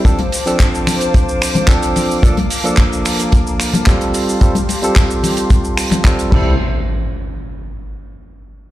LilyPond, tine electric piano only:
\new Staff \with { instrumentName = "Tine electric piano" } { \time 4/4 \key f \major \tempo 4 = 110 <f c' d' a'>16 r8 <f c' d' a'>2~ <f c' d' a'>16 <f c' d' a'>4 | <f bes d' a'>16 r8 <f bes d' a'>2~ <f bes d' a'>16 <g c' f' a'>4 | <g c' f' a'>16 r8 <g c' f' a'>2~ <g c' f' a'>16 <g c' f' a'>8 <g c' e' a'>8 | r1 | }